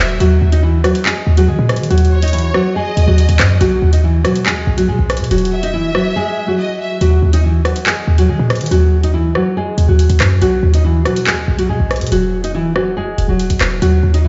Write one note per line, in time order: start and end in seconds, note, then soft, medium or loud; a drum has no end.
0.00 0.19 E1 loud
0.00 0.18 F#3 medium
0.00 0.17 F#4 medium
0.00 0.19 E5 medium
0.20 0.41 D#2 loud
0.20 0.51 F#3 medium
0.20 0.50 F#4 loud
0.20 closed hi-hat medium
0.42 0.93 D#2 loud
0.52 0.62 D#4 medium
0.52 0.62 D#5 medium
0.52 closed hi-hat medium
0.63 0.83 E3 medium
0.63 0.82 E4 medium
0.84 1.04 F#3 medium
0.84 1.03 F#4 medium
0.84 cross-stick medium
0.84 closed hi-hat medium
0.95 closed hi-hat medium
1.06 1.36 G#3 medium
1.06 1.35 G#4 medium
1.06 clap loud
1.27 1.50 D#2 loud
1.37 1.47 F#3 medium
1.37 1.47 F#4 medium
1.37 closed hi-hat medium
1.48 1.58 D#3 loud
1.48 1.89 G#3 medium
1.48 1.88 G#4 medium
1.59 1.82 A#2 loud
1.69 cross-stick medium
1.69 closed hi-hat medium
1.76 1.90 D#3 loud
1.76 closed hi-hat medium
1.83 closed hi-hat medium
1.90 2.52 D#2 loud
1.90 2.21 F#3 medium
1.90 2.20 F#4 loud
1.90 closed hi-hat medium
1.98 closed hi-hat soft
2.05 closed hi-hat soft
2.12 2.72 C#5 medium
2.22 2.32 D#4 medium
2.22 2.33 D#5 medium
2.22 closed hi-hat medium
2.28 closed hi-hat medium
2.33 2.53 E3 medium
2.33 2.52 E4 medium
2.33 closed hi-hat medium
2.38 closed hi-hat medium
2.54 2.74 F#3 medium
2.54 2.74 F#4 medium
2.54 cross-stick medium
2.76 3.06 G#3 medium
2.76 3.06 G#4 loud
2.76 3.57 D#5 medium
2.97 3.07 D#2 loud
2.97 closed hi-hat medium
3.08 3.28 D#2 loud
3.08 3.58 F#3 medium
3.08 3.58 F#4 medium
3.18 closed hi-hat medium
3.29 3.39 D#2 loud
3.29 closed hi-hat medium
3.39 3.60 F#2 loud
3.39 cross-stick loud
3.39 clap loud
3.39 closed hi-hat medium
3.61 3.81 B1 loud
3.61 3.91 F#3 medium
3.61 3.91 F#4 loud
3.61 closed hi-hat medium
3.82 4.26 D#2 loud
3.93 4.03 D#4 medium
3.93 4.03 D#5 medium
3.93 closed hi-hat medium
4.04 4.23 E3 medium
4.04 4.23 E4 medium
4.25 4.47 B2 loud
4.25 4.44 F#3 medium
4.25 4.44 F#4 medium
4.25 cross-stick medium
4.25 closed hi-hat medium
4.36 closed hi-hat medium
4.46 4.66 D#2 loud
4.46 4.76 G#3 medium
4.46 4.76 G#4 medium
4.46 clap loud
4.67 4.90 B1 loud
4.78 4.88 F#3 medium
4.78 4.87 F#4 medium
4.78 closed hi-hat medium
4.88 4.99 B2 loud
4.88 5.29 G#3 medium
4.88 5.28 G#4 medium
4.99 5.22 B1 loud
5.10 cross-stick medium
5.10 closed hi-hat medium
5.17 5.31 B2 loud
5.17 closed hi-hat medium
5.24 closed hi-hat medium
5.31 6.13 E1 loud
5.31 5.61 F#3 medium
5.31 5.61 F#4 loud
5.31 closed hi-hat medium
5.38 closed hi-hat medium
5.45 closed hi-hat soft
5.52 6.54 E5 loud
5.63 5.73 D#4 medium
5.63 5.73 D#5 medium
5.63 closed hi-hat medium
5.74 5.93 E3 medium
5.74 5.93 E4 medium
5.95 6.15 F#3 medium
5.95 6.14 F#4 medium
5.95 cross-stick medium
6.16 6.46 G#3 medium
6.16 6.46 G#4 medium
6.48 6.98 F#3 medium
6.48 6.98 F#4 medium
6.59 6.79 D#5 medium
6.80 7.00 E5 medium
7.01 7.22 D#2 loud
7.01 7.32 F#3 medium
7.01 7.31 F#4 loud
7.01 closed hi-hat medium
7.22 7.74 D#2 loud
7.33 7.43 D#4 medium
7.33 7.43 D#5 medium
7.33 closed hi-hat medium
7.44 7.64 E3 medium
7.44 7.63 E4 medium
7.65 7.85 F#3 medium
7.65 7.84 F#4 medium
7.65 cross-stick medium
7.65 closed hi-hat medium
7.76 closed hi-hat medium
7.86 8.17 G#3 medium
7.86 8.16 G#4 medium
7.86 clap loud
8.08 8.30 D#2 loud
8.18 8.29 F#3 medium
8.18 8.28 F#4 medium
8.18 closed hi-hat medium
8.29 8.39 D#3 loud
8.29 8.69 G#3 medium
8.29 8.69 G#4 medium
8.39 8.62 A#2 loud
8.50 cross-stick medium
8.50 closed hi-hat soft
8.55 closed hi-hat medium
8.61 8.71 D#3 loud
8.61 closed hi-hat medium
8.66 closed hi-hat medium
8.71 9.33 D#2 loud
8.71 9.02 F#3 medium
8.71 9.01 F#4 loud
8.71 closed hi-hat medium
9.03 9.13 D#4 medium
9.03 9.14 D#5 medium
9.03 closed hi-hat medium
9.14 9.34 E3 medium
9.14 9.33 E4 medium
9.35 9.55 F#3 medium
9.35 9.55 F#4 medium
9.35 cross-stick medium
9.57 9.87 G#3 medium
9.57 9.87 G#4 loud
9.78 9.88 D#2 loud
9.78 closed hi-hat medium
9.88 10.09 D#2 loud
9.88 10.39 F#3 medium
9.88 10.39 F#4 medium
9.99 closed hi-hat medium
10.10 10.20 D#2 loud
10.10 closed hi-hat medium
10.20 10.41 F#2 loud
10.20 cross-stick medium
10.20 clap loud
10.20 closed hi-hat medium
10.42 10.62 B1 loud
10.42 10.72 F#3 medium
10.42 10.72 F#4 loud
10.42 closed hi-hat medium
10.63 11.07 D#2 loud
10.74 10.83 D#4 medium
10.74 10.84 D#5 medium
10.74 closed hi-hat medium
10.85 11.04 E3 medium
10.85 11.04 E4 medium
11.05 11.28 B2 loud
11.05 11.25 F#3 medium
11.05 11.25 F#4 medium
11.05 cross-stick medium
11.05 closed hi-hat medium
11.16 closed hi-hat medium
11.27 11.47 D#2 loud
11.27 11.57 G#3 medium
11.27 11.57 G#4 medium
11.27 clap loud
11.48 11.71 B1 loud
11.59 11.69 F#3 medium
11.59 11.68 F#4 medium
11.59 closed hi-hat medium
11.69 11.79 B2 loud
11.69 12.10 G#3 medium
11.69 12.09 G#4 medium
11.80 12.03 B1 loud
11.91 cross-stick medium
11.91 closed hi-hat soft
11.96 closed hi-hat medium
12.01 12.11 B2 loud
12.01 closed hi-hat medium
12.07 closed hi-hat medium
12.12 13.14 E1 loud
12.12 12.42 F#3 medium
12.12 12.42 F#4 medium
12.12 closed hi-hat medium
12.44 12.53 D#4 medium
12.44 12.54 D#5 medium
12.44 closed hi-hat medium
12.55 12.74 E3 medium
12.55 12.74 E4 medium
12.76 12.95 F#3 medium
12.76 12.95 F#4 medium
12.76 cross-stick medium
12.97 13.27 G#3 medium
12.97 13.27 G#4 medium
13.18 13.28 E1 loud
13.18 closed hi-hat medium
13.29 13.49 E1 loud
13.29 13.79 F#3 medium
13.29 13.79 F#4 medium
13.39 closed hi-hat medium
13.50 13.60 B1 loud
13.50 closed hi-hat medium
13.61 13.81 E1 loud
13.61 cross-stick medium
13.61 clap loud
13.61 closed hi-hat medium
13.82 14.03 D#2 loud
13.82 14.12 F#3 medium
13.82 14.12 F#4 loud
13.82 closed hi-hat medium
14.03 14.28 D#2 loud
14.14 14.24 D#4 medium
14.14 14.24 D#5 medium
14.14 closed hi-hat medium
14.24 14.28 E3 medium
14.24 14.28 E4 medium